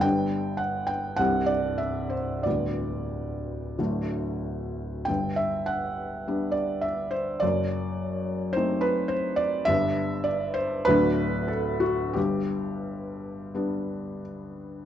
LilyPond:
<<
  \new Staff \with { instrumentName = "Felt piano" } { \time 4/4 \key g \major \tempo 4 = 50 g''8 fis''16 g''16 fis''16 d''16 e''16 c''16 d''4 r4 | g''16 e''16 fis''8. d''16 e''16 c''16 d''4 c''16 b'16 c''16 d''16 | e''8 d''16 c''16 b'8 a'16 fis'16 g'4. r8 | }
  \new Staff \with { instrumentName = "Felt piano" } { \clef bass \time 4/4 \key g \major <g,, g, b d' g'>4 <c,, c, g c' g'>4 <d,, d, g b g'>4 <d,, d, fis a d'>4 | <g,, g,>4 <g b d'>4 <fis,, fis,>4 <a c' dis'>4 | <g,, g, g b d'>4 <d,, d, fis a d'>4 <g,, g,>4 <g b d'>4 | }
>>